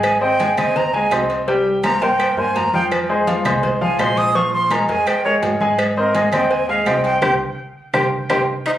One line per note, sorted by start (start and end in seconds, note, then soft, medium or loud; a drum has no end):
0.00 0.52 G#1 loud
0.00 0.15 G#3 medium
0.00 0.15 G#4 medium
0.00 0.15 G#5 medium
0.00 cowbell loud
0.00 low agogo loud
0.00 claves medium
0.04 0.21 G#5 medium
0.04 high conga soft
0.21 0.36 C4 medium
0.21 0.36 C5 medium
0.21 0.37 D#5 medium
0.21 0.55 G5 loud
0.21 high conga soft
0.39 0.54 G#3 medium
0.39 0.55 G#4 medium
0.39 0.55 G#5 medium
0.39 cowbell medium
0.39 high conga medium
0.39 low timbale medium
0.39 low agogo loud
0.57 1.07 D#2 medium
0.57 0.87 C4 medium
0.57 0.88 C5 medium
0.57 0.88 D#5 medium
0.57 0.78 G#5 loud
0.57 cowbell medium
0.57 high conga soft
0.57 low conga medium
0.57 low agogo loud
0.57 claves medium
0.76 0.95 A#5 loud
0.76 cowbell loud
0.76 high conga soft
0.76 low conga medium
0.94 1.09 G#3 medium
0.94 1.09 G#4 medium
0.94 1.12 G#5 loud
0.94 1.09 G#5 medium
0.94 high conga soft
1.11 1.95 C2 medium
1.11 1.41 C4 medium
1.11 1.42 C5 medium
1.11 1.42 D#5 medium
1.11 cowbell medium
1.11 high conga soft
1.11 low timbale medium
1.11 low agogo loud
1.11 claves medium
1.30 cowbell medium
1.30 high conga soft
1.30 low agogo medium
1.48 1.77 G3 medium
1.48 1.77 G4 medium
1.48 1.78 G5 medium
1.48 cowbell loud
1.48 high conga soft
1.66 high conga soft
1.84 1.99 A#3 medium
1.84 1.99 A#4 medium
1.84 1.99 C5 medium
1.84 2.04 A#5 loud
1.84 cowbell medium
1.84 high conga medium
1.84 low timbale medium
1.84 low agogo loud
1.84 claves medium
2.01 2.35 G2 medium
2.01 2.31 A#3 medium
2.01 2.32 A#4 medium
2.01 2.32 C5 medium
2.01 2.38 G5 medium
2.01 cowbell medium
2.20 cowbell loud
2.20 high conga soft
2.20 low agogo medium
2.20 claves medium
2.37 2.54 G2 medium
2.37 2.67 A#3 medium
2.37 2.67 A#4 medium
2.37 2.67 C5 medium
2.37 2.58 G#5 loud
2.37 high conga soft
2.55 3.39 F2 medium
2.55 2.74 A#5 medium
2.55 cowbell medium
2.55 high conga soft
2.55 low timbale medium
2.55 low agogo medium
2.73 3.03 F3 medium
2.73 3.03 F4 medium
2.73 3.03 F5 medium
2.73 2.85 G5 loud
2.73 high conga medium
2.92 cowbell loud
2.92 high conga soft
2.92 low agogo loud
2.92 claves medium
3.09 3.24 G#3 medium
3.09 3.24 G#4 medium
3.09 3.25 C5 medium
3.09 high conga soft
3.27 3.42 F3 medium
3.27 3.42 F4 medium
3.27 3.42 F5 medium
3.27 cowbell medium
3.27 high conga medium
3.27 low timbale medium
3.27 low agogo medium
3.45 3.95 C2 medium
3.45 3.75 G#3 medium
3.45 3.75 G#4 medium
3.45 3.75 C5 medium
3.45 cowbell medium
3.45 high conga soft
3.45 low conga medium
3.45 low agogo loud
3.45 claves medium
3.63 cowbell loud
3.63 high conga soft
3.63 low conga medium
3.81 3.96 F3 medium
3.81 3.96 F4 medium
3.81 3.96 F5 medium
3.81 4.01 G#5 medium
3.81 high conga soft
3.99 4.83 A#1 medium
3.99 4.29 G#3 medium
3.99 4.29 G#4 medium
3.99 4.29 C5 medium
3.99 4.19 C6 loud
3.99 cowbell medium
3.99 high conga soft
3.99 low timbale medium
3.99 low agogo loud
3.99 claves medium
4.17 4.37 D#6 loud
4.17 cowbell medium
4.17 high conga soft
4.17 low agogo medium
4.35 4.65 F3 medium
4.35 4.65 F4 medium
4.35 4.65 F5 medium
4.35 4.53 C#6 loud
4.35 cowbell loud
4.35 high conga soft
4.53 4.73 C6 loud
4.53 high conga soft
4.70 4.86 G#3 medium
4.70 4.86 G#4 medium
4.70 4.86 A#4 medium
4.70 4.89 A#5 medium
4.70 cowbell medium
4.70 high conga loud
4.70 low timbale medium
4.70 low agogo loud
4.70 claves medium
4.88 5.39 F2 medium
4.88 5.18 G#3 medium
4.88 5.18 G#4 medium
4.88 5.19 A#4 medium
4.88 5.08 G#5 loud
4.88 cowbell medium
4.88 high conga soft
5.06 5.24 G5 medium
5.06 cowbell loud
5.06 high conga soft
5.06 low agogo loud
5.06 claves medium
5.25 5.54 G#3 medium
5.25 5.55 G#4 medium
5.25 5.55 A#4 medium
5.25 5.35 C#5 medium
5.25 high conga soft
5.42 6.26 G#2 medium
5.42 cowbell medium
5.42 high conga soft
5.42 low timbale loud
5.42 low agogo medium
5.60 5.90 G#3 medium
5.60 5.91 G#4 medium
5.60 5.91 G#5 medium
5.60 high conga medium
5.79 cowbell loud
5.79 high conga soft
5.79 low agogo loud
5.79 claves medium
5.97 6.12 C4 medium
5.97 6.17 A#4 medium
5.97 6.12 C5 medium
5.97 6.12 D#5 medium
5.97 high conga soft
6.15 6.30 G#3 medium
6.15 6.30 G#4 medium
6.15 6.32 D#5 medium
6.15 6.30 G#5 medium
6.15 cowbell medium
6.15 high conga loud
6.15 low timbale medium
6.15 low agogo medium
6.32 6.82 D#2 loud
6.32 6.62 C4 medium
6.32 6.63 C5 medium
6.32 6.63 D#5 medium
6.32 6.53 G5 loud
6.32 cowbell medium
6.32 high conga soft
6.32 low conga medium
6.32 low agogo loud
6.32 claves medium
6.51 6.69 G#5 loud
6.51 cowbell loud
6.51 high conga soft
6.69 6.83 G#3 medium
6.69 6.83 G#4 medium
6.69 6.88 F5 loud
6.69 6.84 G#5 medium
6.69 high conga soft
6.86 7.19 C2 medium
6.86 7.16 C4 medium
6.86 7.16 C5 medium
6.86 7.16 D#5 medium
6.86 7.04 G5 medium
6.86 cowbell medium
6.86 high conga soft
6.86 low timbale medium
6.86 low agogo loud
6.86 claves medium
7.04 7.21 G5 loud
7.04 cowbell medium
7.04 high conga soft
7.04 low agogo medium
7.22 7.35 C2 loud
7.22 7.34 G4 loud
7.22 7.34 A#4 loud
7.22 7.34 C5 loud
7.22 7.33 G5 loud
7.22 cowbell loud
7.22 low conga loud
7.22 high timbale medium
7.22 claves loud
7.94 8.07 C2 loud
7.94 8.05 G4 loud
7.94 8.05 A#4 loud
7.94 8.05 C5 loud
7.94 8.05 G5 loud
7.94 cowbell loud
7.94 low conga loud
7.94 high timbale medium
7.94 claves loud
8.29 8.43 C2 loud
8.29 8.41 G4 loud
8.29 8.41 A#4 loud
8.29 8.41 C5 loud
8.29 8.41 G5 medium
8.29 cowbell loud
8.29 low conga medium
8.29 high timbale loud
8.29 claves loud
8.66 8.71 D#4 loud
8.66 8.72 C5 medium
8.66 high bongo medium
8.66 high conga soft
8.66 high timbale medium
8.66 claves medium